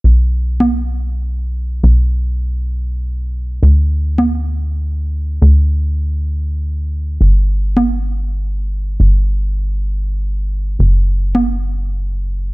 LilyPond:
<<
  \new Staff \with { instrumentName = "Analog synth bass" } { \clef bass \time 4/4 \key b \minor \tempo 4 = 134 b,,1 | b,,1 | d,1 | d,1 |
g,,1 | g,,1 | fis,,1 | }
  \new DrumStaff \with { instrumentName = "Drums" } \drummode { \time 4/4 r4 r16 cgho8. r4 r4 | r4 r4 r4 r4 | r4 r16 cgho8. r4 r4 | r4 r4 r4 r4 |
r4 r16 cgho8. r4 r4 | r4 r4 r4 r4 | r4 r16 cgho8. r4 r4 | }
>>